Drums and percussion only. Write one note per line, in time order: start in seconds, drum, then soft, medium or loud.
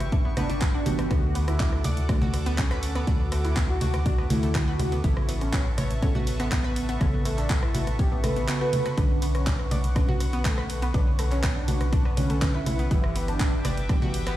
0.00 cross-stick medium
0.00 closed hi-hat medium
0.12 kick loud
0.12 closed hi-hat medium
0.37 cross-stick medium
0.37 open hi-hat loud
0.37 low conga loud
0.50 closed hi-hat medium
0.61 kick loud
0.61 cross-stick medium
0.61 clap loud
0.61 closed hi-hat medium
0.86 open hi-hat loud
0.86 low conga loud
0.99 cross-stick medium
0.99 closed hi-hat medium
1.11 kick loud
1.11 cross-stick medium
1.11 closed hi-hat medium
1.11 ride medium
1.35 open hi-hat loud
1.35 ride medium
1.48 cross-stick medium
1.48 closed hi-hat medium
1.60 kick loud
1.60 clap loud
1.60 closed hi-hat medium
1.60 ride medium
1.73 cross-stick medium
1.84 open hi-hat loud
1.84 ride medium
1.84 low conga medium
1.97 closed hi-hat medium
2.09 kick loud
2.09 cross-stick medium
2.09 closed hi-hat medium
2.09 ride medium
2.22 low conga medium
2.34 cross-stick medium
2.34 open hi-hat loud
2.34 ride medium
2.46 closed hi-hat medium
2.58 kick loud
2.58 clap loud
2.58 closed hi-hat medium
2.58 ride medium
2.71 cross-stick medium
2.83 open hi-hat loud
2.83 ride medium
2.95 cross-stick medium
2.95 closed hi-hat medium
3.07 kick loud
3.07 closed hi-hat medium
3.07 ride medium
3.32 cross-stick medium
3.32 open hi-hat loud
3.32 ride medium
3.45 clap soft
3.45 closed hi-hat medium
3.57 kick loud
3.57 cross-stick medium
3.57 clap loud
3.57 open hi-hat medium
3.57 ride medium
3.81 open hi-hat loud
3.81 ride medium
3.81 low conga medium
3.94 cross-stick medium
3.94 closed hi-hat medium
4.06 kick loud
4.06 closed hi-hat medium
4.06 ride medium
4.18 cross-stick medium
4.30 open hi-hat loud
4.30 ride medium
4.30 low conga loud
4.43 closed hi-hat medium
4.55 kick loud
4.55 cross-stick medium
4.55 clap loud
4.55 closed hi-hat medium
4.55 ride medium
4.79 cross-stick medium
4.79 open hi-hat loud
4.79 ride medium
4.79 low conga loud
4.92 closed hi-hat medium
5.04 kick loud
5.04 closed hi-hat medium
5.04 ride medium
5.17 cross-stick medium
5.29 open hi-hat loud
5.29 ride medium
5.41 cross-stick soft
5.41 closed hi-hat medium
5.53 kick loud
5.53 clap loud
5.53 closed hi-hat medium
5.53 ride medium
5.78 cross-stick medium
5.78 open hi-hat loud
5.78 ride medium
5.78 low conga medium
5.91 closed hi-hat medium
6.02 kick loud
6.02 cross-stick medium
6.02 closed hi-hat medium
6.02 ride medium
6.15 low conga medium
6.27 open hi-hat loud
6.27 ride medium
6.40 cross-stick medium
6.40 closed hi-hat medium
6.52 kick loud
6.52 clap loud
6.52 closed hi-hat medium
6.52 ride medium
6.64 cross-stick medium
6.76 open hi-hat loud
6.76 ride medium
6.89 closed hi-hat medium
7.01 kick loud
7.01 cross-stick medium
7.01 closed hi-hat medium
7.01 ride medium
7.25 cross-stick medium
7.25 open hi-hat loud
7.25 ride medium
7.38 clap soft
7.38 closed hi-hat medium
7.50 kick loud
7.50 clap loud
7.50 open hi-hat medium
7.50 ride medium
7.63 cross-stick medium
7.75 open hi-hat loud
7.75 ride medium
7.75 low conga medium
7.87 cross-stick medium
7.87 closed hi-hat medium
7.99 kick loud
7.99 open hi-hat medium
7.99 ride medium
8.24 cross-stick medium
8.24 open hi-hat loud
8.24 ride medium
8.24 low conga loud
8.36 closed hi-hat medium
8.48 cross-stick soft
8.48 clap loud
8.48 closed hi-hat medium
8.48 ride medium
8.73 open hi-hat loud
8.73 ride medium
8.73 low conga medium
8.86 cross-stick medium
8.86 closed hi-hat medium
8.98 kick loud
8.98 cross-stick soft
8.98 closed hi-hat medium
8.98 ride medium
9.22 open hi-hat loud
9.22 ride medium
9.35 cross-stick medium
9.35 closed hi-hat medium
9.47 kick loud
9.47 clap loud
9.47 closed hi-hat medium
9.47 ride medium
9.59 cross-stick medium
9.71 open hi-hat loud
9.71 ride medium
9.71 low conga medium
9.84 closed hi-hat medium
9.96 kick loud
9.96 cross-stick medium
9.96 closed hi-hat medium
9.96 ride medium
10.09 low conga medium
10.20 cross-stick medium
10.20 open hi-hat loud
10.20 ride medium
10.33 closed hi-hat medium
10.45 kick loud
10.45 clap loud
10.45 closed hi-hat medium
10.45 ride medium
10.58 cross-stick medium
10.70 open hi-hat loud
10.70 ride medium
10.82 cross-stick medium
10.82 closed hi-hat medium
10.94 kick loud
10.94 closed hi-hat medium
10.94 ride soft
11.19 cross-stick medium
11.19 open hi-hat loud
11.19 ride medium
11.32 clap soft
11.32 closed hi-hat medium
11.43 kick loud
11.43 cross-stick medium
11.43 clap loud
11.43 open hi-hat medium
11.43 ride medium
11.68 open hi-hat loud
11.68 ride medium
11.68 low conga medium
11.81 cross-stick medium
11.81 closed hi-hat medium
11.93 kick loud
11.93 closed hi-hat medium
11.93 ride soft
12.05 cross-stick medium
12.17 open hi-hat loud
12.17 ride medium
12.17 low conga medium
12.30 closed hi-hat medium
12.42 kick loud
12.42 cross-stick medium
12.42 clap loud
12.42 closed hi-hat medium
12.42 ride soft
12.66 cross-stick medium
12.66 open hi-hat loud
12.66 ride medium
12.66 low conga medium
12.79 closed hi-hat medium
12.91 kick loud
12.91 closed hi-hat medium
12.91 ride medium
13.04 cross-stick medium
13.16 open hi-hat loud
13.16 ride medium
13.28 cross-stick medium
13.28 closed hi-hat medium
13.40 kick loud
13.40 clap loud
13.40 closed hi-hat medium
13.40 ride medium
13.65 cross-stick medium
13.65 open hi-hat loud
13.65 ride medium
13.65 low conga medium
13.77 closed hi-hat medium
13.89 kick loud
13.89 cross-stick medium
13.89 closed hi-hat medium
13.89 ride soft
14.02 low conga medium
14.14 open hi-hat loud
14.14 ride medium
14.27 cross-stick medium
14.27 closed hi-hat medium